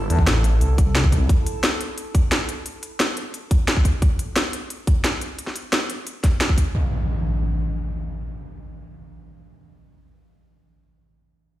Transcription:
Already playing: ambient pad E4 A4 A5
0.10 detuned saw bass E2, closed hi-hat
0.19 kick
0.27 detuned saw bass A1, snare, closed hi-hat
0.44 closed hi-hat
0.61 detuned saw bass C2, closed hi-hat
0.78 kick, closed hi-hat
0.95 snare, closed hi-hat
1.04 kick
1.12 kick, closed hi-hat
1.29 kick, closed hi-hat
1.47 closed hi-hat
1.64 snare, closed hi-hat
1.81 closed hi-hat
1.98 closed hi-hat
2.15 kick, closed hi-hat
2.32 snare, closed hi-hat
2.49 closed hi-hat
2.66 closed hi-hat
2.83 closed hi-hat
3.00 snare, closed hi-hat
3.17 closed hi-hat
3.34 closed hi-hat
3.51 kick, closed hi-hat
3.68 snare, closed hi-hat
3.77 kick
3.85 kick, closed hi-hat
4.02 kick, closed hi-hat
4.19 closed hi-hat
4.36 snare, closed hi-hat
4.53 closed hi-hat
4.70 closed hi-hat
4.87 kick, closed hi-hat
5.04 snare, closed hi-hat
5.21 closed hi-hat
5.39 closed hi-hat
5.47 snare
5.56 closed hi-hat
5.73 snare, closed hi-hat
5.90 closed hi-hat
6.07 closed hi-hat
6.24 kick, snare, closed hi-hat
6.41 snare, closed hi-hat
6.49 kick
6.58 kick, closed hi-hat
6.75 impact

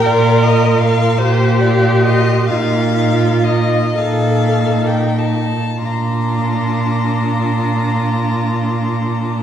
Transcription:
Already playing: viola A#4
0.06 cello A#2, violin F4 D5
0.42 violin F4 D#5
0.79 violin F4 F5
1.18 cello A#2, viola G4, violin C5
1.22 violin F4
1.60 violin F4 D5
2.03 violin F4 D#5
2.47 cello A#2, violin D#4 F5, viola F4
2.96 violin D#4
3.44 violin D#4 D#5
3.97 cello A#2, violin D#4 F5, viola A4
4.55 violin D#4
4.86 violin G5
5.17 violin D#4 A5
5.81 cello A#2, viola D4, violin F4 A#5

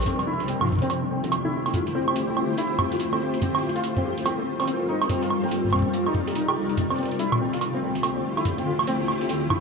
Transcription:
0.02 ambient pad D3 A3 F4 G4 C5, closed hi-hat
0.06 felt piano C4, ambient pad E4, closed hi-hat, mid tom
0.19 closed hi-hat, high woodblock
0.27 felt piano E4
0.40 closed hi-hat
0.48 felt piano C4, closed hi-hat
0.61 felt piano F4, mid tom, high woodblock
0.63 mid tom
0.65 mid tom
0.67 mid tom
0.69 mid tom
0.72 mid tom
0.75 mid tom
0.79 felt piano C4, closed hi-hat, mid tom
0.90 felt piano C4, closed hi-hat, high woodblock
1.11 felt piano C4
1.24 felt piano C4, closed hi-hat
1.32 closed hi-hat, high woodblock
1.45 felt piano E4
1.66 felt piano C4, closed hi-hat, high woodblock
1.74 felt piano F4, closed hi-hat, mid tom
1.87 closed hi-hat
1.95 felt piano C4
2.08 felt piano C4, high woodblock
2.16 closed hi-hat
2.29 felt piano C4
2.37 felt piano C4, high woodblock
2.58 felt piano E4, closed hi-hat
2.79 felt piano C4, mid tom, high woodblock
2.92 felt piano F4, closed hi-hat
3.00 closed hi-hat
3.13 felt piano C4, high woodblock
3.21 ambient pad G3, felt piano C4
3.34 closed hi-hat
3.42 felt piano C4, closed hi-hat, mid tom
3.55 felt piano C4, closed hi-hat, high woodblock
3.59 closed hi-hat
3.63 closed hi-hat
3.69 closed hi-hat
3.76 felt piano F4, closed hi-hat
3.84 closed hi-hat
3.97 felt piano C4, mid tom
4.05 felt piano G4
4.18 closed hi-hat
4.26 felt piano C4, closed hi-hat, high woodblock
4.39 felt piano C4
4.60 felt piano C4, closed hi-hat, high woodblock
4.62 high woodblock
4.64 high woodblock
4.66 felt piano C4, closed hi-hat, high woodblock
4.89 ambient pad C3 D#4 A#4 D5, felt piano D#4
5.02 closed hi-hat, high woodblock
5.09 felt piano C4, closed hi-hat, mid tom
5.23 felt piano F4, closed hi-hat
5.30 high woodblock
5.43 felt piano C4, closed hi-hat
5.49 closed hi-hat
5.51 felt piano C4, closed hi-hat
5.56 closed hi-hat
5.65 mid tom
5.67 mid tom
5.69 mid tom
5.71 felt piano C4, mid tom
5.73 mid tom, high woodblock
5.76 mid tom
5.79 mid tom
5.82 felt piano C4, mid tom
5.94 closed hi-hat
6.07 felt piano D#4, high woodblock
6.14 mid tom
6.27 felt piano G4, closed hi-hat
6.35 felt piano D#4, closed hi-hat
6.48 felt piano G4, high woodblock
6.56 felt piano D#4
6.69 felt piano D#4, closed hi-hat
6.77 ambient pad D3 A3 E4 F4 G4 C5, closed hi-hat, mid tom
6.90 felt piano C4, closed hi-hat, high woodblock
6.96 felt piano C4, closed hi-hat
6.98 closed hi-hat
7.03 closed hi-hat
7.05 closed hi-hat
7.11 closed hi-hat
7.19 felt piano E4, closed hi-hat
7.32 mid tom, high woodblock
7.40 felt piano C4
7.53 felt piano F4, closed hi-hat
7.61 closed hi-hat, high woodblock
7.74 felt piano C4
7.82 felt piano C4
7.95 closed hi-hat
8.03 felt piano C4, closed hi-hat, high woodblock
8.16 felt piano C4
8.37 felt piano E4, closed hi-hat, high woodblock
8.45 closed hi-hat, mid tom
8.58 felt piano C4, closed hi-hat
8.66 felt piano F4
8.79 closed hi-hat, high woodblock
8.87 felt piano C4, closed hi-hat
9.00 felt piano C4
9.08 high woodblock
9.21 felt piano C4, closed hi-hat
9.29 felt piano C4, closed hi-hat
9.50 felt piano E4, mid tom, high woodblock

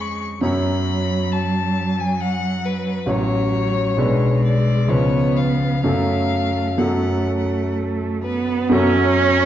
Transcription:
Already playing: grand piano F2 G#3 C#4 C#5, cello G#3
0.01 violin C#6
0.41 grand piano F#2 F#3 C#4 C#5, cello F#3, violin B5
1.32 violin A5
2.00 violin G#5
2.20 violin F#5
2.65 violin B4
3.06 grand piano A1 F#3 C#4 C#5, violin C#5
3.10 cello F#3
3.97 grand piano B1 G#3 D4 B4, cello G#3
4.44 violin D5
4.88 grand piano C#2 F3 C#4 B4, cello B3, violin C#5
5.36 violin F5
5.83 grand piano F#2 F#3 C#4 A4, cello A3, violin F5
6.78 grand piano F#2 F#3 C#4 A4, cello A3, violin F#5
8.22 cello B3, violin B4
8.69 grand piano F#2 F#3 F#4 A4, cello C#4, violin C#5

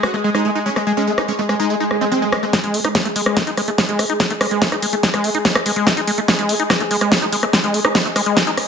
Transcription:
Already playing: synth texture G#3 G#4
0.03 acid bass G#3, supersaw synth F#4, cross-stick
0.14 supersaw synth G#3, acid bass A3
0.24 acid bass G#3, supersaw synth G#3
0.35 acid bass G#3, supersaw synth D#4, cross-stick
0.45 supersaw synth G#3, acid bass A3
0.55 supersaw synth G#3, acid bass D#4
0.66 acid bass G#3, supersaw synth C#4
0.76 supersaw synth G#3, acid bass A3, cross-stick
0.87 acid bass G#3, supersaw synth G#3
0.97 acid bass G#3, supersaw synth C#4
1.07 supersaw synth G#3, acid bass A3
1.18 supersaw synth G#3, acid bass D#4, cross-stick
1.28 acid bass G#3, supersaw synth C#4
1.39 supersaw synth G#3, acid bass A3
1.49 supersaw synth G#3, acid bass G#3, cross-stick
1.60 acid bass G#3, supersaw synth D#4
1.70 supersaw synth G#3, acid bass A3, swell
1.80 supersaw synth G#3, acid bass D#4
1.91 cross-stick
2.01 supersaw synth G#3, acid bass C4
2.12 acid bass G#3, supersaw synth C4
2.22 acid bass G#3, supersaw synth G#3
2.32 acid bass G#3, supersaw synth G#3, cross-stick
2.43 supersaw synth G#3, acid bass A3
2.53 synth texture G#3 G#4, acid bass G#3, kick, snare, closed hi-hat
2.64 acid bass G#3, closed hi-hat
2.74 acid bass A3, open hi-hat
2.85 acid bass D#4, cross-stick, closed hi-hat
2.95 acid bass G#3, kick, snare, closed hi-hat
3.05 acid bass A3, closed hi-hat
3.16 acid bass G#3, open hi-hat
3.26 acid bass G#3, cross-stick
3.37 acid bass A3, kick, snare, closed hi-hat
3.47 acid bass D#4, closed hi-hat
3.57 acid bass G#3, cross-stick, open hi-hat
3.68 acid bass A3, closed hi-hat
3.78 acid bass G#3, kick, snare, closed hi-hat
3.89 acid bass G#3, closed hi-hat
3.99 acid bass A3, cross-stick, open hi-hat
4.10 acid bass D#4
4.20 acid bass G#3, kick, snare, closed hi-hat
4.30 acid bass A3, closed hi-hat
4.41 acid bass G#3, cross-stick, open hi-hat
4.51 acid bass G#3, closed hi-hat
4.62 acid bass A3, kick, snare, closed hi-hat
4.72 acid bass D#4, cross-stick, closed hi-hat
4.82 acid bass G#3, open hi-hat
4.93 acid bass A3, closed hi-hat
5.03 acid bass G#3, kick, snare, closed hi-hat
5.14 acid bass G#3, cross-stick, closed hi-hat
5.24 acid bass A3, open hi-hat
5.35 acid bass D#4, closed hi-hat
5.45 acid bass G#3, kick, snare, closed hi-hat
5.55 acid bass A3, cross-stick, closed hi-hat
5.66 acid bass G#3, open hi-hat
5.76 acid bass G#3, closed hi-hat
5.87 acid bass A3, kick, cross-stick, snare, closed hi-hat
5.97 acid bass D#4, closed hi-hat
6.08 acid bass G#3, open hi-hat
6.18 acid bass A3, closed hi-hat
6.28 acid bass G#3, kick, cross-stick, snare, closed hi-hat
6.39 acid bass G#3, closed hi-hat
6.49 acid bass A3, open hi-hat
6.60 acid bass D#4, closed hi-hat
6.70 acid bass G#3, kick, cross-stick, snare, closed hi-hat
6.80 acid bass A3, closed hi-hat
6.91 acid bass G#3, open hi-hat
7.01 acid bass G#3, cross-stick, closed hi-hat
7.12 acid bass A3, kick, snare, closed hi-hat
7.22 acid bass D#4, closed hi-hat
7.32 acid bass G#3, open hi-hat
7.43 acid bass A3, cross-stick, closed hi-hat
7.53 acid bass G#3, kick, snare, closed hi-hat
7.64 acid bass G#3, closed hi-hat
7.74 acid bass A3, open hi-hat
7.85 acid bass D#4, cross-stick
7.95 acid bass G#3, kick, snare, closed hi-hat
8.05 acid bass A3, closed hi-hat
8.16 acid bass G#3, cross-stick, open hi-hat
8.26 acid bass G#3, closed hi-hat
8.37 acid bass A3, kick, snare, closed hi-hat
8.47 acid bass D#4, closed hi-hat
8.57 cross-stick, open hi-hat

